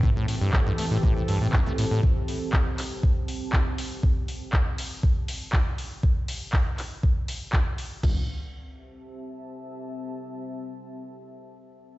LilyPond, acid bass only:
\new Staff \with { instrumentName = "Acid bass" } { \clef bass \time 4/4 \key a \minor \tempo 4 = 120 a,16 a,16 a,16 g,16 a,16 g,16 a16 a,16 a,16 a,16 g,16 a,16 g,16 a16 a,16 a,16 | r1 | r1 | r1 |
r1 | r1 | }